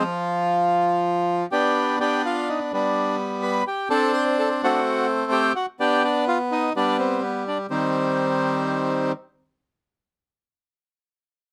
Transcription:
<<
  \new Staff \with { instrumentName = "Bandoneon" } { \time 4/4 \key g \phrygian \tempo 4 = 126 r2. g'4 | g'8 f'8 ees'8 d'4 r8 b'8 g'8 | a'8 c''8 a'8 fis'4 r8 g'8 fis'8 | g'8 d'8 f'8 ees'8 d'8 c'8 b8 d'8 |
c'2. r4 | r1 | }
  \new Staff \with { instrumentName = "Bandoneon" } { \time 4/4 \key g \phrygian f2. <b d'>4 | <b d'>4. <g b>2 r8 | <c' d'>4. <a c'>2 r8 | <b d'>2 <g b>2 |
<ees g>2. r4 | r1 | }
>>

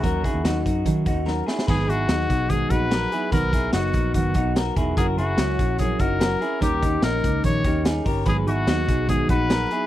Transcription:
<<
  \new Staff \with { instrumentName = "Trumpet" } { \time 4/4 \key gis \minor \tempo 4 = 146 fis'4. r2 r8 | gis'8 fis'4. gis'8 b'4. | ais'4 fis'4 fis'4 r4 | gis'8 fis'4. gis'8 ais'4. |
g'4 ais'4 cis''4 r4 | gis'8 fis'4. gis'8 b'4. | }
  \new Staff \with { instrumentName = "Clean electric guitar" } { \time 4/4 \key gis \minor <fis' ais'>8 <e' gis'>8 <dis' fis'>4. <dis' fis'>8 <fis' ais'>8 <e' gis'>8 | <gis' b'>8 <e' gis'>8 <dis' fis'>4. <dis' fis'>8 <fis' ais'>8 <e' gis'>8 | <fis' b'>8 <e' gis'>8 <dis' fis'>4. <dis' fis'>8 <fis' ais'>8 <e' gis'>8 | <fis' ais'>8 <e' gis'>8 <cis' fis'>4. <dis' fis'>8 <fis' ais'>8 <e' gis'>8 |
<g' ais'>8 <dis' g'>8 <ais dis'>4. <dis' g'>8 <dis' gis'>8 <g' ais'>8 | <gis' b'>8 <e' gis'>8 <dis' fis'>4. <dis' fis'>8 <fis' ais'>8 <e' gis'>8 | }
  \new Staff \with { instrumentName = "Steel-string acoustic guitar" } { \time 4/4 \key gis \minor <dis fis cis' dis' ais'>8 <cis' dis' ais'>8 <fis cis' dis' ais'>8 <cis' dis' ais'>8 <dis fis cis' dis' ais'>8 <cis' dis' ais'>8 <fis cis' dis' ais'>8 <cis' dis' ais'>8 | <gis, dis fis b dis' gis'>8 <fis b dis' gis'>8 <fis b dis' gis'>8 <fis b dis' gis'>8 <gis, dis fis b dis' gis'>8 <fis b dis' gis'>8 <fis b dis' gis'>8 <fis b dis' gis'>8 | <b, dis fis b dis' ais'>8 <fis b dis' ais'>8 <fis b dis' ais'>8 <fis b dis' ais'>8 <b, dis fis b dis' ais'>8 <fis b dis' ais'>8 <fis b dis' ais'>8 <fis b dis' ais'>8 | <fis cis' e' ais'>8 <cis' e' ais'>8 <fis cis' e' ais'>8 <cis' e' ais'>8 <fis cis' e' ais'>8 <cis' e' ais'>8 <fis cis' e' ais'>8 <cis' e' ais'>8 |
<dis g cis' dis' ais'>8 <cis' dis' ais'>8 <g cis' dis'>8 <cis' dis'>8 <dis g cis' dis' ais'>8 <cis' dis' ais'>8 <g cis' dis' ais'>8 <cis' dis' ais'>8 | <gis, dis fis b dis' gis'>8 <fis b dis' gis'>8 <fis b dis' gis'>8 <fis b dis' gis'>8 <gis, dis fis b dis' gis'>8 <fis b dis' gis'>8 <fis b dis' gis'>8 <fis b dis' gis'>8 | }
  \new Staff \with { instrumentName = "Picked electric bass" } { \clef bass \time 4/4 \key gis \minor dis,8 r16 dis,16 dis,8 fis,8 dis8 dis,4 r8 | gis,,8 gis,,8 dis,8 b,,4 ais,,4 r8 | b,,4 fis,,8 ais,,8 fis,,8 b,,4 e,,8 | fis,,8 fis,,8 cis,8 ais,,4 fis,,4 r8 |
dis,4 ais,,8 cis,8 ais,,8 dis,4 g,,8 | gis,,8 gis,,8 dis,8 b,,4 ais,,4 r8 | }
  \new DrumStaff \with { instrumentName = "Drums" } \drummode { \time 4/4 <hh bd>8 <hh bd>8 <hh sn>8 <hh bd>8 <hh bd>8 <hh bd>8 sn8 sn16 sn16 | <cymc bd>8 hh8 <hh sn>8 <hh bd>8 <hh bd>8 <hh bd>8 <hh sn>8 hh8 | <hh bd>8 <hh bd>8 <hh sn>8 <hh bd>8 <hh bd>8 <hh bd>8 <hh sn>8 <hh bd>8 | <hh bd>8 hh8 <hh sn>8 <hh bd>8 <hh bd>8 <hh bd>8 <hh sn>8 hh8 |
<hh bd>8 <hh bd>8 <hh sn>8 <hh bd>8 <hh bd>8 <hh bd>8 <hh sn>8 <hho bd>8 | <hh bd>8 hh8 <hh sn>8 <hh bd>8 <hh bd>8 <hh bd>8 <hh sn>8 hh8 | }
>>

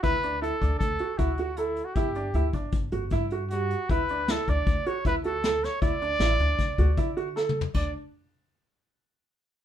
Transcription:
<<
  \new Staff \with { instrumentName = "Trumpet" } { \time 5/4 \key d \major \tempo 4 = 156 b'4 a'4 a'4 fis'4 e'8. fis'16 | g'4. r2 r8 fis'4 | b'4 a'8 d''4 cis''8 b'8 a'4 cis''8 | d''1 r4 |
d''8 r1 r8 | }
  \new Staff \with { instrumentName = "Grand piano" } { \time 5/4 \key d \major e'8 d'8 e'8 d'4 fis'8 e'8 fis'8 a'4 | e'8 d'8 e'8 d'4 fis'8 e'8 fis'8 g4 | e'8 d'8 e'8 d'4 fis'8 e'8 fis'8 a'4 | e'8 d'8 e'8 d'4 fis'8 e'8 fis'8 a'4 |
d'8 r1 r8 | }
  \new Staff \with { instrumentName = "Upright bass" } { \clef bass \time 5/4 \key d \major d,4. d,8 d,8 r8 d,2 | g,,4 d,8 g,,8 g,,8 g,,8 g,2 | d,4. d,8 d,8 r8 d,2 | d,4 a,,8 d,8 d,8 d,8 d2 |
d,8 r1 r8 | }
  \new DrumStaff \with { instrumentName = "Drums" } \drummode { \time 5/4 <hh bd>8 hh8 hh8 <hh bd>8 <hh bd>8 hh8 <hh bd>8 hh8 hh8 hh8 | <hh bd>8 hh8 hh8 <hh bd>8 <hh bd>8 hh8 <hh bd>8 hh8 hh8 hh8 | <hh bd>8 hh8 <hh sn>8 <hh bd>8 <hh bd>8 hh8 <hh bd>8 hh8 <hh sn>8 <hh sn>8 | <hh bd>8 hh8 <hh sn>8 hh8 <hh bd sn>8 <hh bd>8 <hh bd>8 hh8 \tuplet 3/2 { sn8 toml8 tomfh8 } |
<cymc bd>4 r4 r4 r4 r4 | }
>>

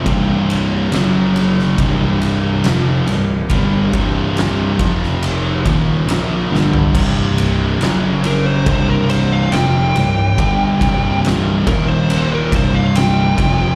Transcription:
<<
  \new Staff \with { instrumentName = "Lead electric guitar" } { \time 4/4 \key ees \lydian \tempo 4 = 70 r1 | r1 | r4. bes'16 c''8 bes'16 c''16 f''16 g''4~ | g''4 r8 bes'16 c''8 bes'16 c''16 f''16 g''4 | }
  \new Staff \with { instrumentName = "Distorted electric guitar" } { \clef bass \time 4/4 \key ees \lydian <c, g, c>4 <fis, cis fis>4 <c, g, c>4 <f, c f>8 <c, g,>8 | <g, d g>8 <c, g, c>4 <f, c f>4 <ees, bes, ees>8 <bes, f bes>8 <g, d g>8 | <c, g, c>4 <fis, cis fis>4 <c, g, c>4 <f, c f>8 <c, g,>8 | <g, d g>8 <c, g, c>4 <ees, bes, ees>4 <c, g, c>4 <f, c f>8 | }
  \new Staff \with { instrumentName = "Distorted electric guitar" } { \clef bass \time 4/4 \key ees \lydian <c, g, c>4 <fis, cis fis>4 <c, g, c>4 <f, c f>8 <c, g,>8 | <g, d g>8 <c, g, c>4 <f, c f>4 <ees, bes, ees>8 <bes, f bes>8 <g, d g>8 | <c, g, c>4 <fis, cis fis>4 <c, g, c>4 <f, c f>8 <c, g,>8 | <g, d g>8 <c, g, c>4 <ees, bes, ees>4 <c, g, c>4 <f, c f>8 | }
  \new Staff \with { instrumentName = "Distorted electric guitar" } { \clef bass \time 4/4 \key ees \lydian <c, g, c>4 <fis, cis fis>4 <c, g, c>4 <f, c f>8 <c, g,>8 | <g, d g>8 <c, g, c>4 <f, c f>4 <ees, bes, ees>8 <bes, f bes>8 <g, d g>8 | <c, g, c>4 <fis, cis fis>4 <c, g, c>4 <f, c f>8 <c, g,>8 | <g, d g>8 <c, g, c>4 <ees, bes, ees>4 <c, g, c>4 <f, c f>8 | }
  \new Staff \with { instrumentName = "Picked electric bass" } { \clef bass \time 4/4 \key ees \lydian c,,4 fis,,4 c,,4 f,,8 c,,8 | g,,8 c,,4 f,,4 ees,,8 bes,,8 g,,8 | c,,4 fis,,4 c,,4 f,,8 c,,8 | g,,8 c,,4 ees,,4 c,,4 f,,8 | }
  \new DrumStaff \with { instrumentName = "Drums" } \drummode { \time 4/4 <bd cymr>8 cymr8 <cymr sn>8 cymr16 sn16 <bd cymr>8 cymr8 <cymr sn>8 <cymr sn>8 | <bd cymr>8 <bd cymr>8 <cymr sn>8 <bd cymr>16 sn16 cymr8 <bd cymr>8 <cymr sn>8 sn16 tomfh16 | <cymc bd>8 cymr8 <cymr sn>8 cymr8 <bd cymr>8 cymr8 <cymr sn>8 cymr8 | <bd cymr>8 <bd cymr>8 <cymr sn>8 <bd cymr>8 cymr8 <bd cymr>8 <cymr sn>8 <bd cymr>8 | }
>>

